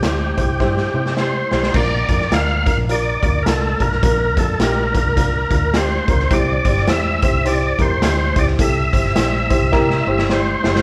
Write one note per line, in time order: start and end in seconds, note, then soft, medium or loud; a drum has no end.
0.00 0.32 D2 medium
0.00 0.33 C3 medium
0.00 0.25 E4 medium
0.00 1.14 G4 medium
0.00 0.25 G4 medium
0.00 0.25 C5 medium
0.00 snare loud
0.00 closed hi-hat medium
0.37 0.57 C2 medium
0.37 0.52 E4 medium
0.37 0.52 G4 medium
0.37 0.52 C5 medium
0.37 kick medium
0.37 closed hi-hat medium
0.60 0.89 G2 medium
0.60 0.82 E4 medium
0.60 0.82 G4 medium
0.60 0.82 C5 loud
0.60 kick medium
0.60 snare medium
0.77 snare soft
0.94 1.42 C3 medium
0.94 1.09 E4 medium
0.94 1.09 G4 medium
0.94 1.10 C5 medium
1.06 snare medium
1.17 1.39 E4 medium
1.17 1.40 G4 medium
1.17 1.40 C5 medium
1.17 1.77 C5 medium
1.17 snare medium
1.51 1.71 B1 medium
1.51 1.66 E4 medium
1.51 1.66 G4 medium
1.51 1.66 C5 medium
1.51 snare medium
1.63 snare medium
1.74 2.03 A#1 loud
1.74 2.62 A#2 medium
1.74 1.97 D4 medium
1.74 1.97 F4 medium
1.74 1.97 A#4 medium
1.74 2.34 D5 medium
1.74 kick loud
1.74 crash medium
2.08 2.28 F2 medium
2.08 2.24 D4 medium
2.08 2.24 F4 medium
2.08 2.24 A#4 medium
2.08 kick medium
2.08 closed hi-hat medium
2.21 snare soft
2.32 2.70 D2 medium
2.32 2.54 D4 medium
2.32 2.54 F4 medium
2.32 2.54 A#4 medium
2.32 2.67 F5 loud
2.32 snare loud
2.32 closed hi-hat medium
2.66 2.81 D4 medium
2.66 2.81 F4 medium
2.66 2.81 A#4 medium
2.66 2.78 F5 medium
2.66 kick medium
2.66 closed hi-hat medium
2.77 3.15 A#1 medium
2.89 3.11 D4 medium
2.89 3.11 F4 medium
2.89 3.11 A#4 loud
2.89 3.43 D5 loud
2.89 closed hi-hat medium
3.23 3.42 D2 medium
3.23 3.38 D4 medium
3.23 3.38 F4 medium
3.23 3.38 A#4 medium
3.23 kick medium
3.23 closed hi-hat medium
3.43 3.74 C2 medium
3.43 3.68 D4 medium
3.43 3.68 F4 medium
3.43 3.47 A#4 medium
3.43 3.68 A#4 medium
3.43 snare loud
3.43 closed hi-hat loud
3.48 3.82 A4 medium
3.80 3.99 B1 medium
3.80 3.95 D4 medium
3.80 3.95 F4 medium
3.80 3.95 A#4 medium
3.80 4.02 A#4 medium
3.80 kick medium
3.80 closed hi-hat medium
3.92 snare soft
4.03 4.37 A#1 loud
4.03 4.90 A#2 medium
4.03 4.25 D4 medium
4.03 4.25 F4 medium
4.03 4.25 A#4 loud
4.03 4.39 A#4 medium
4.03 kick loud
4.03 closed hi-hat loud
4.37 4.56 F2 medium
4.37 4.52 D4 medium
4.37 4.52 F4 medium
4.37 4.59 A4 medium
4.37 4.52 A#4 medium
4.37 kick medium
4.37 closed hi-hat medium
4.60 4.98 A#1 medium
4.60 4.82 D4 medium
4.60 4.82 F4 medium
4.60 4.82 G4 medium
4.60 4.96 A#4 medium
4.60 snare loud
4.60 closed hi-hat medium
4.94 5.09 D4 medium
4.94 5.09 F4 medium
4.94 5.09 A#4 medium
4.94 5.78 A#4 loud
4.94 kick medium
4.94 closed hi-hat medium
5.05 5.43 C2 medium
5.16 5.39 D4 medium
5.16 5.39 F4 medium
5.16 5.39 A#4 loud
5.16 kick medium
5.16 closed hi-hat loud
5.51 5.98 D2 medium
5.51 5.66 D4 medium
5.51 5.66 F4 medium
5.51 5.66 A#4 medium
5.51 kick medium
5.51 closed hi-hat medium
5.74 5.96 D4 medium
5.74 5.96 F4 medium
5.74 5.96 G4 medium
5.74 6.34 C5 medium
5.74 snare loud
5.74 closed hi-hat loud
6.08 6.27 C#2 medium
6.08 6.23 D4 medium
6.08 6.23 F4 medium
6.08 6.23 A#4 medium
6.08 kick medium
6.08 closed hi-hat medium
6.19 snare soft
6.31 6.59 C2 loud
6.31 7.18 C3 medium
6.31 6.53 E4 medium
6.31 6.53 G4 medium
6.31 6.53 C5 medium
6.31 6.91 D5 loud
6.31 kick loud
6.31 closed hi-hat loud
6.65 6.84 G1 medium
6.65 6.80 E4 medium
6.65 6.80 G4 medium
6.65 6.80 C5 medium
6.65 kick medium
6.65 closed hi-hat medium
6.77 snare soft
6.87 7.26 E2 medium
6.87 7.10 E4 medium
6.87 7.10 G4 medium
6.87 7.10 C5 medium
6.87 7.24 E5 loud
6.87 snare loud
6.87 closed hi-hat medium
7.22 7.37 E4 medium
7.22 7.37 G4 medium
7.22 7.37 C5 medium
7.22 7.47 E5 medium
7.22 kick medium
7.22 closed hi-hat medium
7.33 7.71 C2 medium
7.45 7.67 E4 loud
7.45 7.67 G4 medium
7.45 7.67 C5 loud
7.45 7.81 D5 medium
7.45 closed hi-hat medium
7.79 7.98 E2 medium
7.79 7.94 E4 medium
7.79 7.94 G4 medium
7.79 7.94 A#4 medium
7.79 8.39 C5 medium
7.79 kick medium
7.79 closed hi-hat medium
8.02 8.31 D2 loud
8.02 8.24 E4 medium
8.02 8.24 G4 medium
8.02 8.24 C5 medium
8.02 snare loud
8.02 closed hi-hat loud
8.36 8.55 C#2 medium
8.36 8.51 E4 medium
8.36 8.51 G4 medium
8.36 8.51 C5 medium
8.36 8.48 D5 loud
8.36 kick medium
8.36 closed hi-hat medium
8.47 snare soft
8.58 8.87 C2 loud
8.58 9.46 C3 medium
8.58 8.81 E4 medium
8.58 8.81 G4 medium
8.58 8.81 A4 medium
8.58 10.27 E5 medium
8.58 kick loud
8.58 closed hi-hat loud
8.93 9.12 G1 medium
8.93 9.08 E4 medium
8.93 9.08 G4 medium
8.93 9.08 C5 medium
8.93 kick medium
8.93 closed hi-hat medium
9.05 snare soft
9.16 9.54 A#1 medium
9.16 9.38 E4 medium
9.16 9.38 G4 medium
9.16 9.38 C5 medium
9.16 snare loud
9.16 closed hi-hat loud
9.50 9.65 E4 medium
9.50 9.65 G4 medium
9.50 9.65 C5 loud
9.50 kick medium
9.50 closed hi-hat medium
9.62 9.71 C2 loud
9.72 10.01 C3 loud
9.72 9.95 E4 loud
9.72 9.95 G4 loud
9.72 9.95 A#4 loud
9.72 kick medium
9.72 snare medium
9.90 snare soft
10.07 10.54 G1 medium
10.07 10.22 E4 medium
10.07 10.22 G4 medium
10.07 10.22 C5 medium
10.18 snare medium
10.30 10.52 E4 medium
10.30 10.52 G4 medium
10.30 10.52 C5 loud
10.30 10.82 C5 medium
10.30 snare medium
10.63 10.82 F#1 medium
10.63 10.78 E4 medium
10.63 10.79 G4 medium
10.63 10.79 C5 medium
10.63 snare loud
10.75 snare medium